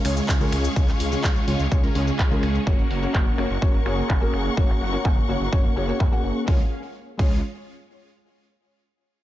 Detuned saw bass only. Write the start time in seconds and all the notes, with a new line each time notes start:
0.05 C#2
0.29 C#2
0.53 C#2
0.76 C#2
1.00 C#2
1.24 C#2
1.48 C#2
1.60 C#2
1.72 C#2
1.95 C#2
2.19 C#2
2.43 C#2
2.67 F#1
2.91 F#1
3.15 F#1
3.38 F#1
3.50 F#1
3.62 F#1
3.86 F#1
4.10 F#1
4.34 F#1
4.57 F#1
4.81 F#1
5.05 F#1
5.29 F#1
5.41 F#1
5.53 F#1
5.76 F#1
6.00 F#2
6.24 F#1
6.48 C#2
7.19 C#2